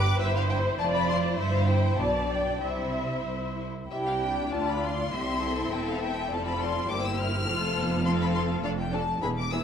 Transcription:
Already playing: G1 G2 G4 B4 D6
0.20 G1 G2 E4 C5 E5
0.36 F5
0.50 G5
0.79 F1 F2 F4 C5 D5 A5
0.94 B5
1.09 C6
1.39 G1 G2 E4 C5 E5
1.55 F5
1.69 G5
1.99 B1 B2 D4 D5 A5
2.32 G5
2.63 C2 C3 E4 C5 E5
3.28 C2
3.91 C2 D4 E4 G4 E5 G5
4.06 F5
4.21 G5
4.52 D2 F4 D5 A5
4.69 B5
4.83 C6
5.12 C2 C4 E4 G4 E5
5.42 A4
5.71 E1 E2 E5 G5
5.87 F5
6.01 G5
6.30 F1 F2 C4 F4 A4 D5 A5
6.46 B5
6.60 C6
6.89 G1 G2 A#3 E4 G4 C5 D6
7.04 E6
7.18 F6
7.46 F1 F2 A3 F4 A4 C5
7.77 B3
8.05 C4 F4 A4 F5 C6
8.22 B5
8.34 C6
8.63 F1 F2 A3 D4 A4 D5 F5
8.78 G5
8.92 A3 D4 A4 D5 A5
9.22 E1 E2 B3 E4 G#4 B4 B5
9.37 D6
9.52 B3 E4 G#4 B4 E6

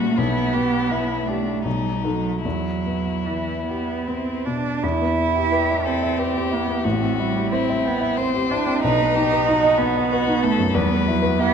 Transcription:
Already playing: A#1 A#2 G3 C#4 E4 F#4 G4
0.16 B1 B3 E4
0.53 B3 G4
0.91 E4
1.26 A3 D4 G4
1.64 B1 G3 D#4
2.03 F#3 D#4 A4
2.43 E2 F#3 E4
2.86 B3
3.25 E3 E4
3.66 B3 G4
4.07 B3 C4
4.46 B2 D4
4.83 E2 E4
5.01 B3
5.18 E4
5.36 G4
5.50 G4 B4
5.70 E5
5.85 C4 A4 G5
6.03 E5
6.18 G4 B4
6.35 G4
6.51 B3 E4
6.68 B3
6.84 A1 A3 F#4
7.01 C4
7.19 G3 E4
7.35 G4
7.52 C4 E4 C5
7.69 E5
7.85 B3 G5
8.00 E5
8.17 C4 C5
8.34 G4
8.51 D4 E4
8.67 C4
8.83 B1 D#4 B4
9.01 B3
9.15 D#4 G4
9.32 B4
9.47 D#4 F#4
9.63 D#5
9.78 B3 B5
9.96 D#5
10.10 F#4 B4
10.28 D#4
10.42 A3 B3 A4
10.58 F#2
10.70 A3
10.74 E2 G3 B4
10.91 B3
11.07 F#3 E4
11.22 B4
11.39 B3 E4 G4

